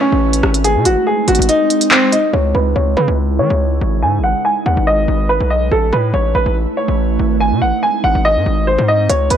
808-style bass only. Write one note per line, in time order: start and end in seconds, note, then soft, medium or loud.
0.12 0.42 A1 loud
0.43 0.77 G#1 loud
0.76 0.87 C3 loud
0.85 0.96 G#1 loud
1.28 1.39 G#1 loud
1.39 1.49 G#1 loud
2.33 2.54 C#2 loud
2.55 2.75 C#2 loud
2.76 2.96 C#2 loud
2.97 3.08 C#3 loud
3.08 3.40 C#2 loud
3.39 3.50 E3 loud
3.50 3.80 C#2 loud
3.81 4.04 G#1 loud
4.02 4.20 G#2 loud
4.19 4.34 G#1 loud
4.66 4.77 D#2 loud
4.77 5.07 G#1 loud
5.08 5.39 G#1 loud
5.40 5.70 B1 loud
5.71 5.92 A1 loud
5.93 6.13 A2 loud
6.14 6.34 A1 loud
6.35 6.46 A1 loud
6.46 6.66 A1 loud
6.88 7.18 A1 loud
7.19 7.53 G#1 loud
7.52 7.63 C3 loud
7.62 7.72 G#1 medium
8.04 8.15 G#1 loud
8.15 8.38 G#1 loud
8.36 8.46 G#2 loud
8.46 8.77 G#1 loud
8.78 9.08 G#2 loud
9.09 9.30 C#2 loud
9.31 9.37 C#2 loud